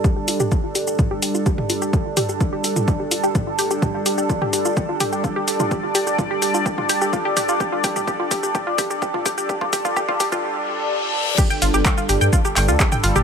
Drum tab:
CC |----------------|----------------|----------------|----------------|
HH |--o---o---o---o-|--o---o---o---o-|--o---o---o---o-|--o---o---o---o-|
SH |x-xxx-xxx-xxx-xx|x-xxx-xxx-xxx-xx|x-xxx-xxx-xxx-xx|x-xxx-xxx-xxx-xx|
CP |----------------|----------------|----------------|----------------|
SD |----------------|----------------|----------------|----------------|
T2 |---o----o----o--|--o----o----o---|o----o----o----o|----o----o----o-|
BD |o---o---o---o---|o---o---o---o---|o---o---o---o---|o---o---o---o---|

CC |----------------|----------------|x---------------|
HH |--o---o---o---o-|--o---o---------|--o---o---o---o-|
SH |x-xxx-xxx-xxx-xx|x-xxx-xx--------|xxxxxxxxxxxxxxxx|
CP |----------------|----------------|----x-----x-x---|
SD |----------------|----------------|r--r--r--r--r--r|
T2 |---o----o----o--|--o----o--------|-------------o-o|
BD |o-o-o-o-o-o-o-o-|oooooooo--------|o---o---o---o---|